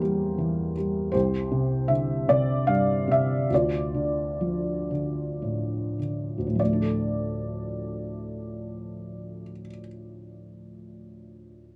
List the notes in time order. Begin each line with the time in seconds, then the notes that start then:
Already playing: E2 G3 A#3 G4 A#4 C5
0.02 G3
0.38 E3
0.77 G3
1.12 C2 G4 C5
1.51 C3
1.88 D3 E5
2.28 C3 D5
2.67 G2 F5
3.08 C3 E5
3.50 D2 F4
3.54 D5
3.94 D3
4.41 F3
4.91 D3
5.42 A2
5.99 D3
6.38 D2
6.47 A2
6.55 F3
6.60 D5
6.65 A3
6.73 D4
6.82 A4